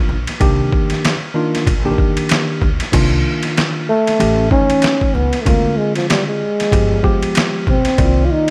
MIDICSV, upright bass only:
0, 0, Header, 1, 2, 480
1, 0, Start_track
1, 0, Key_signature, -3, "minor"
1, 0, Tempo, 631579
1, 309, Time_signature, 4, 2, 24, 8
1, 6462, End_track
2, 0, Start_track
2, 0, Title_t, "Upright bass"
2, 0, Program_c, 0, 32
2, 67, Note_on_c, 0, 34, 80
2, 186, Note_off_c, 0, 34, 0
2, 309, Note_on_c, 0, 36, 97
2, 510, Note_off_c, 0, 36, 0
2, 1268, Note_on_c, 0, 34, 91
2, 1470, Note_off_c, 0, 34, 0
2, 1989, Note_on_c, 0, 38, 83
2, 2107, Note_off_c, 0, 38, 0
2, 2230, Note_on_c, 0, 36, 103
2, 2431, Note_off_c, 0, 36, 0
2, 3190, Note_on_c, 0, 33, 94
2, 3391, Note_off_c, 0, 33, 0
2, 3913, Note_on_c, 0, 37, 81
2, 4029, Note_off_c, 0, 37, 0
2, 4152, Note_on_c, 0, 38, 104
2, 4352, Note_off_c, 0, 38, 0
2, 5110, Note_on_c, 0, 31, 91
2, 5311, Note_off_c, 0, 31, 0
2, 5832, Note_on_c, 0, 35, 83
2, 5949, Note_off_c, 0, 35, 0
2, 6068, Note_on_c, 0, 36, 101
2, 6270, Note_off_c, 0, 36, 0
2, 6462, End_track
0, 0, End_of_file